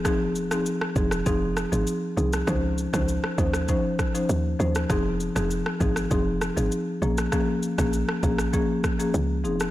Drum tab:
SH |x-xxx-xxx-xxx-xx|x-xxx-xxx-xxx-xx|x-xxx-xxx-xxx-xx|x-xxx-xxx-xxx-xx|
SD |r--r-r-r--r----r|r--r-r-r--r----r|r--r-r-r--r----r|r--r-r-r--r----r|
BD |o-----o-o-------|o--o--o-o-o-----|o-----o-o-------|o--o--o-o-o-----|